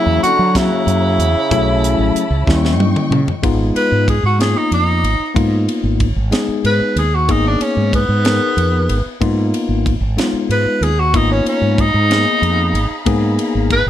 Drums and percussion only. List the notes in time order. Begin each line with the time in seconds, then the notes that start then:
0.24 closed hi-hat
0.55 kick, snare, closed hi-hat
0.88 closed hi-hat
1.20 closed hi-hat
1.51 kick, closed hi-hat
1.84 closed hi-hat
2.16 closed hi-hat
2.47 kick, snare
2.65 snare
2.80 high tom
2.96 mid tom
3.12 mid tom
3.28 floor tom
3.44 kick, ride
3.76 ride
4.08 kick, ride
4.41 snare, ride
4.72 ride
5.04 ride
5.36 kick, ride
5.69 ride
6.00 kick, ride
6.32 snare, ride
6.65 ride
6.97 ride
7.29 kick, ride
7.61 ride
7.93 kick, ride
8.25 snare, ride
8.58 ride
8.89 ride
9.22 kick, ride
9.54 ride
9.86 kick, ride
10.18 snare, ride
10.51 ride
10.83 ride
11.14 kick, ride
11.46 ride
11.78 kick, ride
12.11 snare, ride
12.43 ride
12.75 ride
13.06 kick, ride
13.39 ride
13.70 kick, ride